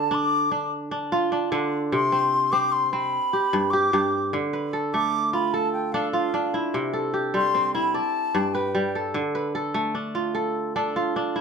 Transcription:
Already playing: D3 D4 G4 A5
0.11 D4 D6
0.51 D4
0.91 D4
1.12 F4
1.32 D4
1.52 D3 D4
1.92 C3 C6
2.12 C4
2.52 C4 D6
2.72 C6
2.86 C6
2.93 C4 B5
3.33 G4
3.53 G2
3.70 G4 D6
3.93 G2 G4
4.33 D3
4.53 B4
4.73 A4
4.94 A3 D6
5.33 F4 B5
5.53 A4 A5
5.73 G5
5.92 D4 A4 F5
6.12 F4 F5
6.34 D4
6.54 E4
6.74 C3
6.93 A4
7.14 G4
7.34 G3 C6
7.55 C4
7.75 E4 B5
7.94 D5 A5
8.35 G2 D5
8.54 B4 G5
8.75 G3
8.95 A4
9.14 D3
9.35 B4
9.55 A4
9.74 A3
9.95 D4
10.15 F4
10.35 A4
10.76 D4 A4
10.96 F4
11.16 D4
11.36 E4

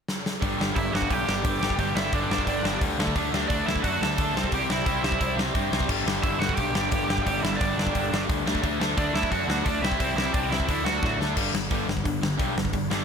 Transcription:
0.08 snare
0.26 snare
0.41 G1 G2 D3 G3, kick, open hi-hat
0.58 G1 G2 D3 G3, snare
0.75 G1 G2 D3 G3 E4 E5, kick, open hi-hat
0.92 G1 G2 D3 G3 F#4 F#5, snare
1.02 kick
1.10 B1 G2 D3 G3 G4 G5, kick, open hi-hat
1.27 G1 G2 D3 G3, snare
1.44 G1 G2 D3 G3, kick, open hi-hat
1.61 G1 G2 D3 G3, snare
1.70 kick
1.78 G1 G2 D3 G3 G4 G5, kick, open hi-hat
1.95 G1 G2 D3 G3 E4 E5, snare
2.12 G1 G2 D3 G3 D4 D5, kick, open hi-hat
2.30 G1 G2 D3 G3, snare
2.38 kick
2.47 G1 G2 D3 G3, kick, open hi-hat
2.63 G1 G2 D3 G3, snare
2.81 D2 G2 D3 G3, kick, open hi-hat
2.98 D2 D3 A3 D4, snare
3.07 kick
3.15 D2 D3 A3 D4, kick, open hi-hat
3.32 D2 D3 A3 D4, snare
3.48 D2 D3 A3 D4 D5, kick, open hi-hat
3.66 D2 D3 A3 D4 E4 E5, snare
3.76 kick
3.82 F#2 D3 A3 D4 F#4 F#5, kick, open hi-hat
4.01 D2 D3 A3 D4 A4 A5, snare
4.18 D2 D3 A3 D4, kick, open hi-hat
4.34 C2 C3 G3 C4, snare
4.44 kick
4.52 C2 C3 G3 C4 G4 G5, kick, open hi-hat
4.69 C2 C3 G3 C4 E4 E5, snare
4.86 C2 C3 G3 C4, kick, open hi-hat
5.02 C2 C3 G3 C4, snare
5.12 kick
5.20 C2 C3 G3 C4, kick, open hi-hat
5.36 C2 C3 G3 C4, snare
5.54 G2 C3 G3 C4, kick, open hi-hat
5.71 C2 C3 G3 C4, snare
5.80 kick
5.89 G1 G2 D3 G3, kick, crash
6.05 G1 G2 D3 G3, snare
6.23 G1 G2 D3 G3 E4 E5, kick, open hi-hat
6.39 G1 G2 D3 G3 F#4 F#5, snare
6.49 kick
6.55 B1 G2 D3 G3 G4 G5, kick, open hi-hat
6.73 G1 G2 D3 G3, snare
6.91 G1 G2 D3 G3, kick, open hi-hat
7.08 G1 G2 D3 G3, snare
7.18 kick
7.23 G1 G2 G4 G5, open hi-hat
7.27 D3 G3, kick
7.40 G1 G2 D3 G3 E4 E5
7.45 snare
7.56 D4 D5
7.60 G1 G2 D3 G3, kick, open hi-hat
7.76 G1 G2 D3 G3, snare
7.87 kick
7.94 G1 G2 D3 G3, kick, open hi-hat
8.12 G1 G2 D3 G3, snare
8.28 D2 G2 D3 G3, kick, open hi-hat
8.45 D2 D3 A3 D4, snare
8.55 kick
8.62 D2 D3 A3 D4, kick, open hi-hat
8.80 D2 D3 A3 D4, snare
8.97 D2 D3 A3 D4 D5, kick, open hi-hat
9.13 D2 D3 A3 D4 E4 E5, snare
9.23 kick
9.31 F#2 D3 A3 D4 F#4 F#5, kick, open hi-hat
9.47 D2 D3 A3 D4, snare
9.64 D2 D3 A3 D4 D5, kick, open hi-hat
9.81 C2 C3 G3 C4 E4 E5, snare
9.92 kick
9.98 C2 C3 G3 C4, kick, open hi-hat
10.16 C2 C3 G3 C4 E4 E5, snare
10.33 C2 C3 G3 C4 D4 D5, kick, open hi-hat
10.49 C2 C3 G3 C4 E4 E5, snare
10.60 kick
10.68 D2 D3 A3 D4, kick, open hi-hat
10.84 D2 D3 A3 D4 F#4 F#5, snare
11.02 A2 D3 A3 D4, kick, snare
11.18 D2 D3 A3 D4, snare
11.37 G1 G2 D3 G3, kick, crash
11.52 G1 G2 D3, snare
11.71 G1 G2 D3 G3, kick, open hi-hat
11.87 G1 G2 D3, snare
11.97 kick
12.04 G1 G2 D3, kick, open hi-hat
12.21 G1 G2 D3, snare
12.38 B1 G2 D3 G3, kick, open hi-hat
12.56 G1 G2 D3, snare
12.65 kick
12.73 G1 G2 D3, kick, open hi-hat
12.90 G2 D3 G3, snare

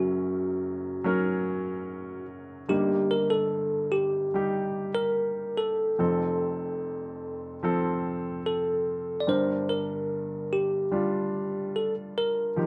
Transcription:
Already playing: F#1 F#2 F#3 C#4 F#4 A#4
1.04 F#3 C#4 A#4
2.68 G1 G2 G3 A#3 D#4 G4
3.11 A#4
3.30 A4
3.92 G4
4.34 G3 D#4 G4
4.95 A#4
5.57 A4
5.98 F1 F2 F3 C4 A4
7.63 F3 C4 A4
8.46 A4
9.20 D5
9.27 G1 G2 G3 D4 A#4 C5
9.69 A#4
10.53 G4
10.91 G3 D4 F4
11.76 A4
12.18 A#4
12.56 D#2 F3 D#4 G4

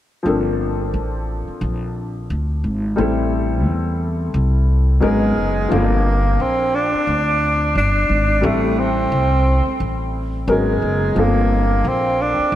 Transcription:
0.23 G1 F3 A#3 C4 D4 A4
0.94 A1
1.48 muted upright bass stroke
1.61 A#1
2.30 D2
2.64 G#1
2.96 A1 G3 A3 C4 E4
3.00 A4
3.66 E2
4.34 C2
5.00 G#1 F#3 G#3 B3 C#4 D#4 A#4
5.37 F#1
5.69 G1 F3 A#3 C4 D4
5.73 A4
6.40 A#1 C4
6.75 D4
6.94 muted upright bass stroke
7.07 D2
7.75 G1 D4
8.09 G#1
8.41 A1 G3 A3 C4 E4 A4
8.45 A3
8.80 C4
9.12 C2
9.66 muted upright bass stroke
9.80 A1
10.47 G#1 F#3 G#3 B3 C#4 D#4 A#4
10.82 F#1
11.14 G1 F3 A#3 C4 D4
11.19 A#3 A4
11.84 A#1 C4
12.21 D4
12.39 muted upright bass stroke
12.52 C2

